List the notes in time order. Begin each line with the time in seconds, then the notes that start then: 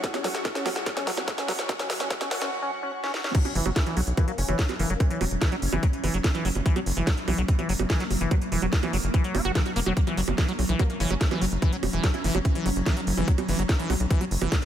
Already playing: F#3 C#4 E4 F#4 F#5 C#6
0.04 kick, snare, closed hi-hat
0.14 C#4, snare, closed hi-hat, high bongo
0.24 F#3, snare, open hi-hat
0.35 snare, closed hi-hat
0.45 kick, snare, closed hi-hat, high bongo
0.55 C#4, snare, closed hi-hat
0.66 F#3, snare, open hi-hat, high bongo
0.76 snare, closed hi-hat
0.86 kick, snare, closed hi-hat
0.97 C#4, snare, closed hi-hat, high bongo
1.07 F#3, snare, open hi-hat
1.17 snare, closed hi-hat, high bongo
1.28 kick, snare, closed hi-hat
1.38 C#4, snare, closed hi-hat
1.48 F#3, snare, open hi-hat, high bongo
1.59 snare, closed hi-hat
1.69 kick, snare, closed hi-hat, high bongo
1.79 C#4, snare, closed hi-hat
1.90 snare, open hi-hat
2.00 C#4, snare, closed hi-hat, high bongo
2.10 kick, snare, closed hi-hat
2.21 C#4, snare, closed hi-hat, high bongo
2.31 snare, open hi-hat
2.42 C#4, snare, closed hi-hat
2.62 C#4
2.83 C#4
3.04 C#4, snare
3.14 snare
3.24 C#4, snare
3.35 F#3 C#4, kick, closed hi-hat, crash
3.45 closed hi-hat, high bongo
3.55 F#1 E3, open hi-hat
3.66 F#1 F#3, high bongo
3.76 kick, snare, closed hi-hat
3.86 E3, closed hi-hat
3.97 B1 F#3, open hi-hat, high bongo
4.07 B1, closed hi-hat
4.17 E3 A#3, kick, closed hi-hat, high bongo
4.28 F#3 A#3, closed hi-hat
4.38 F#1 C#4, open hi-hat
4.48 F#1 E3 C#4, closed hi-hat, high bongo
4.59 F#3, kick, snare, closed hi-hat
4.69 snare, closed hi-hat, high bongo
4.79 F#1 E3 A#3, open hi-hat
4.90 F#1 F#3 A#3, closed hi-hat
5.00 C#4, kick, closed hi-hat, high bongo
5.10 E3, closed hi-hat
5.21 E1 F#3, open hi-hat, high bongo
5.31 E1, closed hi-hat
5.42 E3, kick, snare, closed hi-hat
5.52 F#3, closed hi-hat, high bongo
5.62 F#1, open hi-hat
5.73 F#1 E3, closed hi-hat, high bongo
5.83 F#3, kick, closed hi-hat
5.93 closed hi-hat
6.04 F#1 E3, open hi-hat, high bongo
6.14 F#1 F#3, closed hi-hat
6.24 kick, snare, closed hi-hat, high bongo
6.35 E3, closed hi-hat
6.45 F#1 F#3, open hi-hat
6.55 F#1, closed hi-hat, high bongo
6.66 E3 A#3, kick, closed hi-hat
6.76 F#3, closed hi-hat, high bongo
6.86 F#1, open hi-hat
6.97 F#1 E3, closed hi-hat
7.07 F#3, kick, snare, closed hi-hat, high bongo
7.17 closed hi-hat
7.28 B1 E3, open hi-hat, high bongo
7.38 B1 F#3, closed hi-hat
7.48 kick, closed hi-hat
7.59 E3, closed hi-hat, high bongo
7.69 F#1 F#3, open hi-hat
7.79 F#1, closed hi-hat, high bongo
7.90 E3, kick, snare, closed hi-hat
8.00 F#3, snare, closed hi-hat
8.11 F#1, open hi-hat, high bongo
8.21 F#1 E3, closed hi-hat
8.31 F#3, kick, closed hi-hat, high bongo
8.42 closed hi-hat
8.52 E1 E3, open hi-hat
8.62 E1 F#3, closed hi-hat, high bongo
8.73 kick, snare, closed hi-hat
8.83 E3, closed hi-hat, high bongo
8.93 F#1 F#3, open hi-hat
9.04 F#1, closed hi-hat
9.14 E3, kick, closed hi-hat, high bongo
9.24 F#3, closed hi-hat
9.35 F#1 F#4, open hi-hat, high bongo
9.45 F#1 F#4, closed hi-hat
9.55 E3, kick, snare, closed hi-hat
9.66 closed hi-hat, high bongo
9.76 E1 A#3, open hi-hat
9.86 E1 F#3, closed hi-hat, high bongo
9.97 C#4, kick, closed hi-hat
10.07 E3, closed hi-hat, high bongo
10.17 F#1 F#3, open hi-hat
10.28 F#1, closed hi-hat, high bongo
10.38 E3, kick, snare, closed hi-hat
10.48 F#3, closed hi-hat
10.59 B1, open hi-hat, high bongo
10.69 B1 E3, closed hi-hat
10.79 F#3 A#3, kick, closed hi-hat, high bongo
10.90 A#3, closed hi-hat
11.00 F#1 E3 C#4, open hi-hat
11.10 F#1 F#3 C#4, closed hi-hat, high bongo
11.21 kick, snare, closed hi-hat
11.31 E3, snare, closed hi-hat, high bongo
11.42 F#1 F#3, open hi-hat
11.52 F#1, closed hi-hat
11.62 E3, kick, closed hi-hat, high bongo
11.73 F#3, closed hi-hat
11.83 E1, open hi-hat, high bongo
11.93 E1 E3, closed hi-hat
12.04 F#3 C#4, kick, snare, closed hi-hat
12.14 E4, closed hi-hat, high bongo
12.24 F#1 E3, open hi-hat
12.35 F#1 F#3, closed hi-hat, high bongo
12.45 kick, closed hi-hat
12.55 E3, closed hi-hat
12.66 F#1 F#3, open hi-hat, high bongo
12.76 F#1, closed hi-hat
12.86 E3, kick, snare, closed hi-hat, high bongo
12.97 F#3, closed hi-hat
13.07 F#1, open hi-hat
13.17 F#1 E3, closed hi-hat, high bongo
13.28 F#3 B3, kick, closed hi-hat
13.38 closed hi-hat, high bongo
13.48 F#1 E3, open hi-hat
13.59 F#1 F#3, closed hi-hat
13.69 kick, snare, closed hi-hat, high bongo
13.79 E3, closed hi-hat
13.90 B1 F#3, open hi-hat, high bongo
14.00 B1, closed hi-hat
14.11 E3, kick, closed hi-hat
14.21 F#3, closed hi-hat, high bongo
14.31 F#1, open hi-hat
14.42 F#1 E3, closed hi-hat, high bongo
14.52 F#3, kick, snare, closed hi-hat